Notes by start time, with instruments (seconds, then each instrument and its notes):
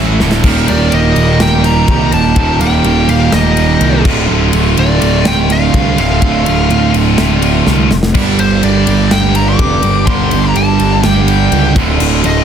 Already playing: picked electric bass A1, distorted electric guitar A2 E3 A3
0.19 picked electric bass D1, distorted electric guitar D2 A2 D3, snare
0.32 snare
0.43 picked electric bass D#1, distorted electric guitar D#2 A#2 D#3 G3 G4, kick, crash
0.52 distorted electric guitar G3 G4
0.60 distorted electric guitar G3 G4
0.68 picked electric bass D#1, distorted electric guitar G3 G4, lead electric guitar D5, ride
0.74 distorted electric guitar G3 G4
0.81 distorted electric guitar G3 G4
0.90 picked electric bass D#1, distorted electric guitar G3 G4, ride
0.95 distorted electric guitar G3 G4, lead electric guitar D#5
1.05 distorted electric guitar G3 G4
1.13 picked electric bass D#1, distorted electric guitar G3 G4, ride
1.21 distorted electric guitar G3 G4
1.29 distorted electric guitar G3 G4
1.36 distorted electric guitar G3 G4
1.40 picked electric bass D#1, distorted electric guitar G3 G4, lead electric guitar G5, snare, ride
1.51 distorted electric guitar G3 G4
1.59 distorted electric guitar G3 G4
1.64 distorted electric guitar G3 G4, lead electric guitar A#5, snare, ride
1.74 distorted electric guitar G3 G4
1.81 distorted electric guitar G3 G4
1.88 picked electric bass C2, distorted electric guitar G3 G4, kick, ride
1.97 distorted electric guitar G3 G4
2.05 distorted electric guitar G3 G4
2.12 picked electric bass D#1, distorted electric guitar G3 G4, lead electric guitar A5, ride
2.21 distorted electric guitar G3 G4
2.26 distorted electric guitar G3 G4
2.36 picked electric bass D#1, distorted electric guitar D#2 A#2 D#3 G3 G4, kick, ride
2.44 distorted electric guitar G3 G4
2.51 distorted electric guitar G3 G4
2.59 picked electric bass D#1, distorted electric guitar G3 G4, lead electric guitar G5, ride
2.67 distorted electric guitar G3 G4
2.74 distorted electric guitar G3 G4
2.82 picked electric bass D#1, distorted electric guitar G3 G4, ride
2.90 distorted electric guitar G3 G4
2.98 distorted electric guitar G3 G4
3.05 picked electric bass D#1, distorted electric guitar G3 G4, lead electric guitar F5, ride
3.12 distorted electric guitar G3 G4
3.20 distorted electric guitar G3 G4
3.28 distorted electric guitar G3 G4
3.32 picked electric bass D#1, distorted electric guitar G3 G4, lead electric guitar D#5, snare, ride
3.44 distorted electric guitar G3 G4
3.51 distorted electric guitar G3 G4
3.57 distorted electric guitar G3 G4, ride
3.66 distorted electric guitar G3 G4
3.74 distorted electric guitar G3 G4
3.81 picked electric bass C2, distorted electric guitar G3 G4, ride
3.89 distorted electric guitar G3 G4
3.98 distorted electric guitar G3 G4
4.05 picked electric bass D1, distorted electric guitar D2 A2 D3 A3 F4, kick, crash
4.13 distorted electric guitar A3 F4
4.20 distorted electric guitar A3 F4
4.28 picked electric bass D1, distorted electric guitar A3 F4
4.36 distorted electric guitar A3 F4
4.44 distorted electric guitar A3 F4
4.51 picked electric bass D1, distorted electric guitar A3 F4, ride
4.58 distorted electric guitar A3 F4
4.65 distorted electric guitar A3 F4
4.74 picked electric bass D1, distorted electric guitar A3 F4, ride
4.79 distorted electric guitar A3 F4, lead electric guitar D5
4.88 distorted electric guitar A3 F4
4.96 distorted electric guitar A3 F4
5.01 picked electric bass D1, distorted electric guitar A3 F4, ride
5.12 distorted electric guitar A3 F4
5.20 distorted electric guitar A3 F4
5.25 picked electric bass D1, distorted electric guitar A3 F4, lead electric guitar G5, snare, ride
5.34 distorted electric guitar A3 F4
5.43 distorted electric guitar A3 F4
5.50 distorted electric guitar A3 F4, lead electric guitar F5, snare, ride
5.58 distorted electric guitar A3 F4
5.65 distorted electric guitar A3 F4
5.74 picked electric bass C2, distorted electric guitar A3 F4, kick, ride
5.81 distorted electric guitar A3 F4
5.89 distorted electric guitar A3 F4
5.97 picked electric bass D1, distorted electric guitar D2 A2 D3 A3 F4, lead electric guitar F5, ride
6.03 distorted electric guitar A3 F4
6.13 distorted electric guitar A3 F4
6.21 picked electric bass D1, distorted electric guitar A3 F4, kick, ride
6.28 distorted electric guitar A3 F4
6.35 distorted electric guitar A3 F4
6.43 picked electric bass D1, distorted electric guitar A3 F4, ride
6.51 distorted electric guitar A3 F4
6.58 distorted electric guitar A3 F4
6.67 picked electric bass D1, distorted electric guitar A3 F4, ride
6.75 distorted electric guitar A3 F4
6.83 distorted electric guitar A3 F4
6.90 picked electric bass D1, distorted electric guitar A3 F4
6.94 distorted electric guitar A3 F4, ride
7.05 distorted electric guitar A3 F4
7.13 distorted electric guitar A3 F4
7.18 picked electric bass D1, distorted electric guitar A3 F4, snare, ride
7.28 distorted electric guitar A3 F4
7.36 distorted electric guitar A3 F4
7.42 distorted electric guitar A3 F4, ride
7.52 distorted electric guitar A3 F4
7.59 distorted electric guitar A3 F4
7.66 picked electric bass C2, distorted electric guitar A3 F4, snare
7.75 distorted electric guitar A3 F4
7.82 distorted electric guitar A3 F4
7.91 picked electric bass F1, snare
8.03 snare
8.15 picked electric bass G1, distorted electric guitar G2 D3 G3 D4 G4, kick, crash, splash
8.22 distorted electric guitar D4 G4
8.29 distorted electric guitar D4 G4
8.37 picked electric bass G1, distorted electric guitar D4 G4, lead electric guitar C5, ride
8.45 distorted electric guitar D4 G4
8.53 distorted electric guitar D4 G4
8.60 picked electric bass G1, distorted electric guitar D4 G4, lead electric guitar D5, ride
8.69 distorted electric guitar D4 G4
8.76 distorted electric guitar D4 G4
8.83 picked electric bass G1, distorted electric guitar D4 G4, ride
8.91 distorted electric guitar D4 G4
8.98 distorted electric guitar D4 G4
9.06 distorted electric guitar D4 G4
9.11 picked electric bass G1, distorted electric guitar D4, lead electric guitar G5, snare, ride
9.15 distorted electric guitar G4
9.21 distorted electric guitar D4 G4
9.29 distorted electric guitar D4 G4
9.35 distorted electric guitar D4 G4, lead electric guitar A#5, ride
9.45 distorted electric guitar D4 G4, lead electric guitar D6
9.52 distorted electric guitar D4 G4
9.59 picked electric bass F1, distorted electric guitar D4 G4, kick, ride
9.69 distorted electric guitar D4 G4
9.75 distorted electric guitar D4 G4
9.82 picked electric bass G1, distorted electric guitar D4 G4, ride
9.91 distorted electric guitar D4 G4
9.99 distorted electric guitar D4 G4
10.06 picked electric bass G1, distorted electric guitar G2 D3 G3 D4 G4, lead electric guitar C6, kick, ride
10.15 distorted electric guitar D4 G4
10.22 distorted electric guitar D4 G4
10.30 picked electric bass G1, distorted electric guitar D4 G4, ride
10.38 distorted electric guitar D4 G4
10.45 distorted electric guitar D4 G4, lead electric guitar A#5
10.53 picked electric bass G1, distorted electric guitar D4 G4, lead electric guitar A5, ride
10.60 distorted electric guitar D4 G4
10.68 distorted electric guitar D4 G4
10.76 distorted electric guitar D4 G4, ride
10.80 picked electric bass G1, distorted electric guitar D4
10.85 distorted electric guitar G4
10.91 distorted electric guitar D4 G4
10.99 distorted electric guitar D4 G4
11.04 picked electric bass G1, distorted electric guitar D4 G4, lead electric guitar G5, snare, ride
11.14 distorted electric guitar D4 G4
11.22 distorted electric guitar D4 G4
11.28 distorted electric guitar D4 G4, ride
11.37 distorted electric guitar D4 G4
11.46 distorted electric guitar D4 G4
11.52 picked electric bass C#2, distorted electric guitar D4 G4, ride
11.61 distorted electric guitar D4 G4
11.68 distorted electric guitar D4 G4
11.75 picked electric bass D1, distorted electric guitar D2 A2 D3 A3 F4, kick, ride
11.84 distorted electric guitar A3 F4
11.92 distorted electric guitar A3 F4
11.99 picked electric bass D1, distorted electric guitar A3 F4, crash
12.07 distorted electric guitar A3 F4
12.14 distorted electric guitar A3 F4
12.22 picked electric bass D1, distorted electric guitar A3 F4, ride
12.26 distorted electric guitar A3 F4, lead electric guitar D#5
12.38 distorted electric guitar A3 F4